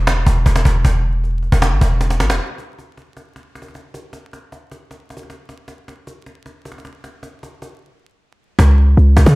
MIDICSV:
0, 0, Header, 1, 3, 480
1, 0, Start_track
1, 0, Tempo, 387097
1, 1048, Time_signature, 4, 2, 24, 8
1, 11599, End_track
2, 0, Start_track
2, 0, Title_t, "808-style bass"
2, 0, Program_c, 0, 38
2, 0, Note_on_c, 0, 28, 104
2, 308, Note_off_c, 0, 28, 0
2, 329, Note_on_c, 0, 28, 107
2, 559, Note_off_c, 0, 28, 0
2, 569, Note_on_c, 0, 28, 108
2, 799, Note_off_c, 0, 28, 0
2, 809, Note_on_c, 0, 28, 107
2, 1039, Note_off_c, 0, 28, 0
2, 1048, Note_on_c, 0, 28, 107
2, 1855, Note_off_c, 0, 28, 0
2, 1889, Note_on_c, 0, 28, 109
2, 2129, Note_on_c, 0, 32, 100
2, 2147, Note_off_c, 0, 28, 0
2, 2242, Note_off_c, 0, 32, 0
2, 2249, Note_on_c, 0, 28, 104
2, 2728, Note_on_c, 0, 32, 103
2, 2747, Note_off_c, 0, 28, 0
2, 2849, Note_on_c, 0, 28, 100
2, 2868, Note_off_c, 0, 32, 0
2, 2963, Note_off_c, 0, 28, 0
2, 10648, Note_on_c, 0, 37, 105
2, 11109, Note_off_c, 0, 37, 0
2, 11128, Note_on_c, 0, 37, 105
2, 11358, Note_off_c, 0, 37, 0
2, 11367, Note_on_c, 0, 37, 105
2, 11483, Note_off_c, 0, 37, 0
2, 11487, Note_on_c, 0, 49, 99
2, 11599, Note_off_c, 0, 49, 0
2, 11599, End_track
3, 0, Start_track
3, 0, Title_t, "Cajon"
3, 89, Note_on_c, 9, 38, 118
3, 213, Note_off_c, 9, 38, 0
3, 329, Note_on_c, 9, 36, 99
3, 453, Note_off_c, 9, 36, 0
3, 568, Note_on_c, 9, 36, 93
3, 629, Note_on_c, 9, 38, 36
3, 689, Note_off_c, 9, 38, 0
3, 689, Note_on_c, 9, 38, 93
3, 692, Note_off_c, 9, 36, 0
3, 748, Note_off_c, 9, 38, 0
3, 748, Note_on_c, 9, 38, 34
3, 809, Note_on_c, 9, 36, 99
3, 872, Note_off_c, 9, 38, 0
3, 933, Note_off_c, 9, 36, 0
3, 1048, Note_on_c, 9, 36, 108
3, 1172, Note_off_c, 9, 36, 0
3, 1533, Note_on_c, 9, 38, 49
3, 1657, Note_off_c, 9, 38, 0
3, 1768, Note_on_c, 9, 38, 38
3, 1889, Note_on_c, 9, 36, 102
3, 1892, Note_off_c, 9, 38, 0
3, 2009, Note_on_c, 9, 38, 122
3, 2013, Note_off_c, 9, 36, 0
3, 2133, Note_off_c, 9, 38, 0
3, 2249, Note_on_c, 9, 36, 96
3, 2373, Note_off_c, 9, 36, 0
3, 2489, Note_on_c, 9, 38, 65
3, 2569, Note_off_c, 9, 38, 0
3, 2569, Note_on_c, 9, 38, 36
3, 2609, Note_off_c, 9, 38, 0
3, 2609, Note_on_c, 9, 38, 69
3, 2649, Note_off_c, 9, 38, 0
3, 2649, Note_on_c, 9, 38, 35
3, 2729, Note_off_c, 9, 38, 0
3, 2729, Note_on_c, 9, 38, 102
3, 2849, Note_off_c, 9, 38, 0
3, 2849, Note_on_c, 9, 38, 102
3, 2968, Note_off_c, 9, 38, 0
3, 2968, Note_on_c, 9, 38, 47
3, 3092, Note_off_c, 9, 38, 0
3, 3202, Note_on_c, 9, 38, 51
3, 3326, Note_off_c, 9, 38, 0
3, 3453, Note_on_c, 9, 38, 45
3, 3577, Note_off_c, 9, 38, 0
3, 3688, Note_on_c, 9, 38, 37
3, 3812, Note_off_c, 9, 38, 0
3, 3926, Note_on_c, 9, 38, 37
3, 4050, Note_off_c, 9, 38, 0
3, 4166, Note_on_c, 9, 38, 42
3, 4290, Note_off_c, 9, 38, 0
3, 4407, Note_on_c, 9, 38, 41
3, 4488, Note_off_c, 9, 38, 0
3, 4488, Note_on_c, 9, 38, 32
3, 4568, Note_off_c, 9, 38, 0
3, 4568, Note_on_c, 9, 38, 24
3, 4650, Note_off_c, 9, 38, 0
3, 4650, Note_on_c, 9, 38, 47
3, 4774, Note_off_c, 9, 38, 0
3, 4887, Note_on_c, 9, 38, 47
3, 5011, Note_off_c, 9, 38, 0
3, 5120, Note_on_c, 9, 38, 51
3, 5244, Note_off_c, 9, 38, 0
3, 5372, Note_on_c, 9, 38, 47
3, 5496, Note_off_c, 9, 38, 0
3, 5606, Note_on_c, 9, 38, 36
3, 5730, Note_off_c, 9, 38, 0
3, 5846, Note_on_c, 9, 38, 38
3, 5970, Note_off_c, 9, 38, 0
3, 6086, Note_on_c, 9, 38, 43
3, 6210, Note_off_c, 9, 38, 0
3, 6328, Note_on_c, 9, 38, 41
3, 6407, Note_off_c, 9, 38, 0
3, 6407, Note_on_c, 9, 38, 31
3, 6488, Note_off_c, 9, 38, 0
3, 6488, Note_on_c, 9, 38, 23
3, 6570, Note_off_c, 9, 38, 0
3, 6570, Note_on_c, 9, 38, 47
3, 6694, Note_off_c, 9, 38, 0
3, 6807, Note_on_c, 9, 38, 47
3, 6931, Note_off_c, 9, 38, 0
3, 7042, Note_on_c, 9, 38, 51
3, 7166, Note_off_c, 9, 38, 0
3, 7293, Note_on_c, 9, 38, 46
3, 7417, Note_off_c, 9, 38, 0
3, 7527, Note_on_c, 9, 38, 38
3, 7651, Note_off_c, 9, 38, 0
3, 7766, Note_on_c, 9, 38, 37
3, 7890, Note_off_c, 9, 38, 0
3, 8007, Note_on_c, 9, 38, 43
3, 8131, Note_off_c, 9, 38, 0
3, 8250, Note_on_c, 9, 38, 42
3, 8329, Note_off_c, 9, 38, 0
3, 8329, Note_on_c, 9, 38, 33
3, 8409, Note_off_c, 9, 38, 0
3, 8409, Note_on_c, 9, 38, 23
3, 8492, Note_off_c, 9, 38, 0
3, 8492, Note_on_c, 9, 38, 49
3, 8616, Note_off_c, 9, 38, 0
3, 8729, Note_on_c, 9, 38, 47
3, 8853, Note_off_c, 9, 38, 0
3, 8963, Note_on_c, 9, 38, 51
3, 9087, Note_off_c, 9, 38, 0
3, 9213, Note_on_c, 9, 38, 46
3, 9337, Note_off_c, 9, 38, 0
3, 9448, Note_on_c, 9, 38, 36
3, 9572, Note_off_c, 9, 38, 0
3, 10648, Note_on_c, 9, 36, 110
3, 10772, Note_off_c, 9, 36, 0
3, 11131, Note_on_c, 9, 38, 47
3, 11255, Note_off_c, 9, 38, 0
3, 11367, Note_on_c, 9, 36, 98
3, 11487, Note_off_c, 9, 36, 0
3, 11487, Note_on_c, 9, 36, 102
3, 11599, Note_off_c, 9, 36, 0
3, 11599, End_track
0, 0, End_of_file